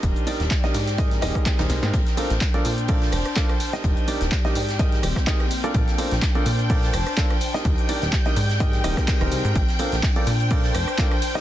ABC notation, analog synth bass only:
X:1
M:4/4
L:1/16
Q:"Swing 16ths" 1/4=126
K:Bb
V:1 name="Analog synth bass" clef=bass
E,,, z2 E,,, z2 _A,,4 E,,, z2 E,,, C,, A,, | B,,, z2 B,,, z2 B,,4 F,,, z4 z | E,,, z2 E,,, z2 _A,,4 E,,, z4 z | B,,, z2 B,,, z2 B,,4 F,,, z4 z |
E,,, z2 E,,, z2 _A,,4 E,,, z2 E,,, C,, A,, | B,,, z2 B,,, z2 B,,4 F,,, z4 z |]